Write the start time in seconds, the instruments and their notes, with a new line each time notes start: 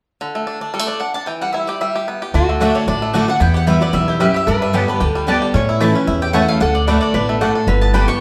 0.21 five-string banjo D3
0.35 five-string banjo A3
0.47 five-string banjo D4
0.61 five-string banjo D4
0.74 five-string banjo G3, mandolin A4
0.79 five-string banjo A3
0.87 five-string banjo D4, mandolin D5
1.00 five-string banjo D4, mandolin F#5
1.14 five-string banjo D4, mandolin A5
1.26 five-string banjo E3, mandolin G5
1.41 five-string banjo G3, mandolin F#5
1.53 five-string banjo E4, mandolin E5
1.67 five-string banjo G4, mandolin D5
1.81 five-string banjo G3, mandolin E5
1.96 five-string banjo G4
2.08 five-string banjo B3
2.22 five-string banjo G4
2.34 upright bass D2, steel-string acoustic guitar D3, five-string banjo D4, resonator guitar played with a steel bar F#4
2.49 five-string banjo A3
2.60 steel-string acoustic guitar D3 A3 D4 F#4, mandolin A3 F#4 D5 E5 F#5, five-string banjo D4
2.75 five-string banjo D4, mandolin C#5
2.87 upright bass A1, steel-string acoustic guitar A2, five-string banjo D4, mandolin D5
3.02 five-string banjo A3, resonator guitar played with a steel bar E4
3.13 steel-string acoustic guitar D3 A3 D4 F#4, mandolin A3 F#4 D5 F#5, five-string banjo D4
3.28 five-string banjo D4, steel-string acoustic guitar D4 F#4, mandolin F#5
3.40 upright bass E2, steel-string acoustic guitar E2, five-string banjo B3, resonator guitar played with a steel bar E4, mandolin G5
3.54 five-string banjo G4, mandolin F#5
3.67 steel-string acoustic guitar E3 G3 B3 F#4, mandolin G3 E4 B4 E5, five-string banjo E4
3.81 five-string banjo B3, steel-string acoustic guitar B3 F#4, mandolin D5
3.93 upright bass B1, steel-string acoustic guitar E2, five-string banjo G3, mandolin E5
4.08 five-string banjo E4, mandolin G4
4.20 steel-string acoustic guitar F#2, five-string banjo G3, mandolin G3 E4 B4 E5, resonator guitar played with a steel bar G4
4.34 five-string banjo G4, mandolin E5
4.47 upright bass G2, steel-string acoustic guitar G2, five-string banjo D4, resonator guitar played with a steel bar B4, mandolin D5
4.62 five-string banjo G3, mandolin E5
4.73 steel-string acoustic guitar D3 G3 B3 G4, five-string banjo B3, mandolin B3 G4 C#5 D5 A5
4.88 steel-string acoustic guitar B3 G4, five-string banjo D4, mandolin B4
5.00 upright bass D2, steel-string acoustic guitar D3, five-string banjo G4
5.07 resonator guitar played with a steel bar A4
5.15 five-string banjo G3
5.27 steel-string acoustic guitar D3 G3 B3 G4, mandolin B3 G4 D5 A5, five-string banjo D4, resonator guitar played with a steel bar D5
5.42 five-string banjo G4
5.54 steel-string acoustic guitar A2, upright bass A2, five-string banjo C#4, resonator guitar played with a steel bar C#5
5.69 five-string banjo E4
5.80 steel-string acoustic guitar E3 A3 C#4 E4, mandolin A3 E4 C#5 A5, five-string banjo G4, resonator guitar played with a steel bar B4
5.95 five-string banjo C#4, steel-string acoustic guitar C#4 E4
6.07 steel-string acoustic guitar E2, upright bass E2, five-string banjo E4
6.22 five-string banjo G4, mandolin G5
6.33 steel-string acoustic guitar E3 A3 C#4 E4, mandolin A3 E4 C#5 F#5 A5, five-string banjo E4
6.48 five-string banjo A3, mandolin F5
6.60 upright bass D2, steel-string acoustic guitar D3, five-string banjo D4, resonator guitar played with a steel bar A4, mandolin F#5
6.75 mandolin D5
6.87 steel-string acoustic guitar D3 A3 D4 F#4, mandolin A3 F#4 B4 D5 F#5, five-string banjo D4, resonator guitar played with a steel bar D5
7.01 five-string banjo D4, mandolin D5
7.14 upright bass A1, steel-string acoustic guitar B2, five-string banjo D4, resonator guitar played with a steel bar B4
7.29 five-string banjo A3
7.41 steel-string acoustic guitar A2, mandolin A3 F#4 D5 F#5, five-string banjo D4, resonator guitar played with a steel bar A4
7.55 five-string banjo D4
7.67 upright bass G1, steel-string acoustic guitar G2, five-string banjo D3, resonator guitar played with a steel bar B4
7.81 five-string banjo B3, mandolin A5
7.93 steel-string acoustic guitar D3 G3 B3 G4, mandolin B3 G4 D5 G5 B5, five-string banjo D4
8.07 steel-string acoustic guitar B3 G4, five-string banjo G4, mandolin C#6